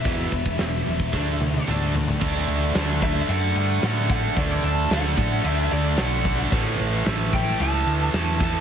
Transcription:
<<
  \new Staff \with { instrumentName = "Lead electric guitar" } { \time 4/4 \key d \mixolydian \tempo 4 = 112 e''2. r4 | r4. e''8 fis''8 fis''8 fis''8 fis''8 | d''8 a''8 fis''4 e''8 d''8 fis''8. r16 | r4. g''8 a''4 a''8 a''8 | }
  \new Staff \with { instrumentName = "Distorted electric guitar" } { \clef bass \time 4/4 \key d \mixolydian <e, b, e>8 <e, b,>8 <e, b,>8 <e, b,>8 <d a d'>8 <d a>8 <d a d'>8 <d a>8 | <d a d'>4 <d a d'>8 <d a d'>8 <d a d'>4 <d a d'>8 <d a d'>8 | <d a d'>4 <d a d'>8 <d a d'>8 <d a d'>4 <d a d'>8 <d a d'>8 | <a, e a>4 <a, e a>8 <a, e a>8 <a, e a>4 <a, e a>8 <a, e a>8 | }
  \new Staff \with { instrumentName = "Distorted electric guitar" } { \clef bass \time 4/4 \key d \mixolydian <e, b, e>8 <e, b,>8 <e, b,>8 <e, b,>8 <d a d'>8 <d a>8 <d a d'>8 <d a>8 | <d a d'>4 <d a d'>8 <d a d'>8 <d a d'>4 <d a d'>8 <d a d'>8 | <d a d'>4 <d a d'>8 <d a d'>8 <d a d'>4 <d a d'>8 <d a d'>8 | <a, e a>4 <a, e a>8 <a, e a>8 <a, e a>4 <a, e a>8 <a, e a>8 | }
  \new Staff \with { instrumentName = "Distorted electric guitar" } { \clef bass \time 4/4 \key d \mixolydian <e, b, e>2 <d a d'>4 <d a d'>4 | r1 | r1 | r1 | }
  \new Staff \with { instrumentName = "Fingered electric bass" } { \clef bass \time 4/4 \key d \mixolydian e,,8 e,,8 e,,8 e,,8 d,4 d,4 | d,8 d,8 d,4 fis,8 g,8 a,4 | d,8 d,8 d,8 a,8 d,8 d,8 b,,4 | a,,8 a,,8 a,,4 cis,8 d,8 e,4 | }
  \new DrumStaff \with { instrumentName = "Drums" } \drummode { \time 4/4 <hho bd>8 bd16 bd16 <hho sn>8. bd16 <bd sn>8 tommh16 tommh16 toml8 tomfh16 tomfh16 | <cymc bd>8 cymr8 <cymr sn>16 sn16 <bd cymr>8 cymr8 cymr8 <cymr sn>8 <bd cymr>8 | <bd cymr>8 cymr8 <cymr sn>16 sn16 <bd cymr>8 cymr8 cymr8 <cymr sn>8 <bd cymr>8 | <bd cymr>8 cymr8 <cymr sn>16 sn16 <bd cymr>8 cymr8 cymr8 <cymr sn>8 <bd cymr>8 | }
>>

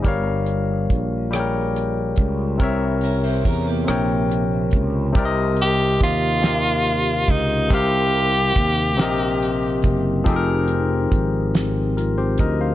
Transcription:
<<
  \new Staff \with { instrumentName = "Tine electric piano" } { \time 6/8 \key c \phrygian \tempo 4. = 47 <g g' bes' des'' f''>4 r8 <g g' aes' bes' des'' g''>4 r8 | <c c' bes' des'' e''>4 r8 <c c' bes' des'' g''>4 r8 | <c c' g' bes' d'' ees''>4 r8 <c c' g' bes' f''>4 r8 | <c c' g' bes' f''>4 r8 <c c' g' bes' ees''>4 r8 |
<f c' ees' g' aes' a' bes'>4 r4 <f' bes'>16 <g' c''>16 <bes' ees''>16 <c'' f''>16 | }
  \new Staff \with { instrumentName = "Tenor saxophone" } { \time 6/8 \key c \phrygian r2. | r2. | r8 g'8 f'4. ees'8 | g'2~ g'8 r8 |
r2. | }
  \new Staff \with { instrumentName = "Clean electric guitar" } { \time 6/8 \key c \phrygian r2. | r8 <des' bes'>16 <e' c''>16 <des' bes'>16 <bes g'>4. r16 | r2. | r2. |
r2. | }
  \new Staff \with { instrumentName = "Fretless electric bass" } { \clef bass \time 6/8 \key c \phrygian g,,4 bes,,4. des,8 | c,4 e,8 bes,,4 des,8 | c,4 ees,4. des,8 | c,4 ees,8 bes,,4 ges,,8 |
f,,4 aes,,4. d,8 | }
  \new DrumStaff \with { instrumentName = "Drums" } \drummode { \time 6/8 <hh bd>8 hh8 <hh bd>8 <hh ss>8 hh8 <hh bd>8 | <hh bd>8 hh8 <hh bd>8 <hh ss>8 hh8 <hh bd>8 | <hh bd>8 hh8 <hh bd>8 <hh sn>8 hh8 <hh bd>8 | <hh bd>8 hh8 <hh bd>8 <hh sn>8 hh8 <hh bd>8 |
<hh bd>8 hh8 <hh bd>8 <hh sn>8 hh8 <hh bd>8 | }
>>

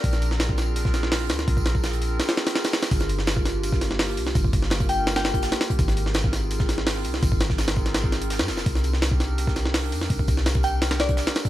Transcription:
<<
  \new Staff \with { instrumentName = "Synth bell" } { \time 4/4 \key g \phrygian \tempo 4 = 167 r1 | r1 | r1 | r4. g''8 r16 g''4 r8. |
r1 | r1 | r1 | r4. g''8 r8 d''4. | }
  \new Staff \with { instrumentName = "Synth texture" } { \time 4/4 \key g \phrygian <bes' bes''>1~ | <bes' bes''>1 | r1 | r1 |
r1 | r1 | r1 | r1 | }
  \new Staff \with { instrumentName = "Ambient pad" } { \time 4/4 \key g \phrygian r8. <c' d' f' aes' bes'>2.~ <c' d' f' aes' bes'>16 | r8. <c' d' f' aes' bes'>2.~ <c' d' f' aes' bes'>16 | r8. <bes d' f' g' bes'>2~ <bes d' f' g' bes'>8 r8. | r8. <bes d' f' g' bes'>2~ <bes d' f' g' bes'>8 r8. |
r8. <c' ees' f' aes' bes'>2~ <c' ees' f' aes' bes'>8 r8. | r8. <c' ees' f' aes' bes'>2~ <c' ees' f' aes' bes'>8 r8. | r8. <c' d' ees' g' bes'>2~ <c' d' ees' g' bes'>8 r8. | r8. <c' d' ees' g' bes'>2~ <c' d' ees' g' bes'>8 r8. | }
  \new Staff \with { instrumentName = "808-style bass" } { \clef bass \time 4/4 \key g \phrygian bes,,2.~ bes,,8 d,8 | bes,,2 r2 | g,,2.~ g,,8 c,8 | g,,2.~ g,,16 r8. |
aes,,2.~ aes,,8 c,8 | aes,,2.~ aes,,16 aes,16 f,,8 | c,2.~ c,8 f,8 | c,2.~ c,16 r8. | }
  \new DrumStaff \with { instrumentName = "Drums" } \drummode { \time 4/4 <hho bd tamb>16 <hh sn>16 <hho tamb>16 sn16 <hho sn tamb>16 bd16 <hho sn tamb>8 <hho tamb>16 <bd sn>16 <hho sn tamb>16 sn16 <hho sn>8 <hho sn tamb>16 <hh sn>16 | <hho bd tamb>16 <bd tamb>16 <hh hho sn>16 <bd tamb>16 <hho sn tamb>16 hh16 <hho tamb>8 <hho sn tamb>16 <hho sn>16 <hho sn tamb>16 <hh hho sn>16 <hho sn tamb>16 <hho sn tamb>16 <hho sn tamb>16 <hho sn tamb>16 | <hho bd tamb>16 <hh sn>16 <hho tamb>16 sn16 <hho sn tamb>16 bd16 <hho sn tamb>8 <hho tamb>16 <bd sn>16 <hho sn tamb>16 sn16 <hho sn>8 <hho tamb>16 sn16 | <hho bd tamb>16 bd16 <hho bd tamb>16 sn16 <hho sn tamb>16 <hh bd>16 <hho tamb>8 <hho sn tamb>16 <hho sn>16 <hho sn tamb>16 <hh bd>16 <hho sn tamb>16 <hh hho sn>16 <hho sn tamb>16 <hh bd>16 |
<hho bd tamb>16 <hh sn>16 <hho tamb>16 sn16 <hho sn tamb>16 bd16 <hho sn tamb>8 <hho tamb>16 <bd sn>16 <hho sn tamb>16 sn16 <hho sn>8 <hho tamb>16 sn16 | <hho bd tamb>16 bd16 <hho sn tamb>16 <bd sn>16 <hho sn tamb>16 <hh hho sn>16 <bd tamb>16 <hho sn>16 <hho sn tamb>16 bd16 <hho sn tamb>16 hh16 <hho sn tamb>16 <sn tamb>16 <hho sn tamb>16 <sn tamb>16 | <hho bd tamb>16 <hh sn>16 <hho tamb>16 sn16 <hho sn tamb>16 bd16 <hho sn tamb>8 <hho tamb>16 <bd sn>16 <hho sn tamb>16 sn16 <hho sn>8 <hho tamb>16 sn16 | <hho bd tamb>16 bd16 <hho bd tamb>16 sn16 <hho sn tamb>16 <hh bd>16 <hho tamb>8 <hho sn tamb>16 <hho sn>16 <hho sn tamb>16 <hh bd>16 <hho sn tamb>16 <hh hho sn>16 <hho sn tamb>16 <hh bd>16 | }
>>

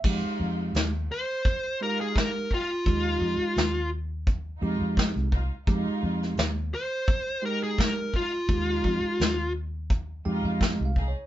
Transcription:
<<
  \new Staff \with { instrumentName = "Lead electric guitar" } { \time 4/4 \key f \minor \tempo 4 = 85 r4. c''4 bes'16 aes'16 bes'8 f'8~ | f'4. r2 r8 | r4. c''4 bes'16 aes'16 bes'8 f'8~ | f'4. r2 r8 | }
  \new Staff \with { instrumentName = "String section" } { \time 4/4 \key f \minor <aes ees' f'>4 r4. <aes ees' f'>8 r8 <aes ees' g'>16 r16 | <aes ees' f'>4 r4. <aes ees' f'>8 r8 <aes ees' f'>16 r16 | <aes ees' f'>4 r4. <aes ees' g'>8 r8 <aes ees' f'>16 r16 | <aes ees' f'>4 r4. <aes ees' f'>8 r8 <aes ees' aes'>16 r16 | }
  \new Staff \with { instrumentName = "Tine electric piano" } { \time 4/4 \key f \minor << { r1 | r1 | r1 | r2 r8 g''16 f''16 \tuplet 3/2 { ees''8 f''8 des''8 } | } \\ { <aes ees' g'>4 r4. <aes ees' g'>4 r8 | <aes ees' g'>4 r4. <aes ees' g'>4 r8 | <aes ees' g'>4 r4. <aes ees' g'>4 r8 | <aes ees' g'>4 r4. <aes ees' g'>4 r8 | } >> }
  \new Staff \with { instrumentName = "Fingered electric bass" } { \clef bass \time 4/4 \key f \minor f,16 r16 f,8 ees,8 r2 r8 | ees,8 f,16 r16 ees,4. f,16 f,8 c,8 r16 | f,16 r16 f,8 ees,8 r2 r8 | ees,8 f,16 r16 ees,4. f,16 f,8 c,8 r16 | }
  \new DrumStaff \with { instrumentName = "Drums" } \drummode { \time 4/4 <cymc bd>4 <hh sn>4 <hh bd>4 <hh bd sn>8 bd8 | <hh bd>4 <hh sn>4 <hh bd>4 <hh bd sn>8 bd8 | <hh bd>8. sn16 <hh sn>4 <hh bd>4 <hh bd sn>8 bd8 | <hh bd>8 bd8 <hh sn>4 <hh bd>4 <hh bd sn>8 bd8 | }
>>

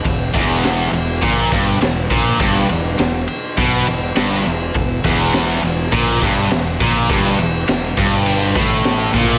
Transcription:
<<
  \new Staff \with { instrumentName = "Distorted electric guitar" } { \clef bass \time 4/4 \key e \minor \tempo 4 = 102 e,8 e,4 e,8 ais,8 g,8 e,8 ais,8 | g,8 e,8 e,8 r8 b,8 e,8 g,8 e,8 | e,8 e,4 e,8 ais,8 g,8 e,8 ais,8 | g,8 e,8 e,8 g,4 a,4 ais,8 | }
  \new Staff \with { instrumentName = "Distorted electric guitar" } { \clef bass \time 4/4 \key e \minor e,8 e,4 e,8 ais,8 g,8 e,8 ais,8 | g,8 e,8 e,8 r8 b,8 e,8 g,8 e,8 | e,8 e,4 e,8 ais,8 g,8 e,8 ais,8 | g,8 e,8 e,8 g,4 a,4 ais,8 | }
  \new Staff \with { instrumentName = "Fingered electric bass" } { \clef bass \time 4/4 \key e \minor e,,8 e,,4 e,,8 ais,,8 g,,8 e,,8 ais,,8 | g,,8 e,,8 e,,8 r8 b,,8 e,,8 g,,8 e,,8 | e,,8 e,,4 e,,8 ais,,8 g,,8 e,,8 ais,,8 | g,,8 e,,8 e,,8 g,,4 a,,4 ais,,8 | }
  \new DrumStaff \with { instrumentName = "Drums" } \drummode { \time 4/4 <bd cymr>8 <bd cymr>8 <cymr sn>8 cymr8 <bd cymr>8 <bd cymr>8 <cymr sn>8 <bd cymr>8 | <bd cymr>8 cymr8 <cymr sn>8 cymr8 <bd cymr>8 cymr8 <cymr sn>8 cymr8 | <bd cymr>8 <bd cymr>8 <cymr sn>8 cymr8 <bd cymr>8 <bd cymr>8 <cymr sn>8 <bd cymr>8 | <bd cymr>8 cymr8 <cymr sn>8 <bd cymr>8 cymr8 <bd cymr>8 <cymr sn>8 <bd cymr>8 | }
>>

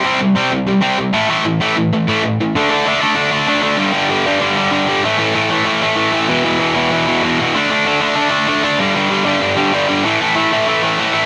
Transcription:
\new Staff \with { instrumentName = "Distorted electric guitar" } { \clef bass \time 4/4 \key a \major \tempo 4 = 192 <c g c'>8 <c g>8 <c g c'>8 <c g>8 <c g>8 <c g c'>8 <c g>8 <a, e a>8 | <a, e a>8 <a, e>8 <a, e a>8 <a, e>8 <a, e>8 <a, e a>8 <a, e>8 <a, e>8 | <d a d'>8 <d a d'>8 <d a d'>8 <d a d'>8 <d a d'>8 <d a d'>8 <d a d'>8 <d a d'>8 | <g, d g>8 <g, d g>8 <g, d g>8 <g, d g>8 <g, d g>8 <g, d g>8 <g, d g>8 <g, d g>8 |
<a, e a>8 <a, e a>8 <a, e a>8 <a, e a>8 <a, e a>8 <a, e a>8 <a, e a>8 <a, e a>8 | <e, b, e>8 <e, b, e>8 <e, b, e>8 <e, b, e>8 <e, b, e>8 <e, b, e>8 <e, b, e>8 <e, b, e>8 | <d a d'>8 <d a d'>8 <d a d'>8 <d a d'>8 <d a d'>8 <d a d'>8 <d a d'>8 <d a d'>8 | <g, d g>8 <g, d g>8 <g, d g>8 <g, d g>8 <g, d g>8 <g, d g>8 <g, d g>8 <g, d g>8 |
<a, e a>8 <a, e a>8 <a, e a>8 <a, e a>8 <a, e a>8 <a, e a>8 <a, e a>8 <a, e a>8 | }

